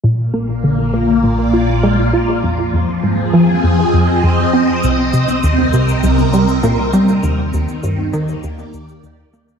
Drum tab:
SH |----------------|----------------|x-xxx-xxxxxxx-xx|x-xxx-xxxxxxx-xx|
CG |----------------|----------------|---o-o---o----o-|---o-o---o------|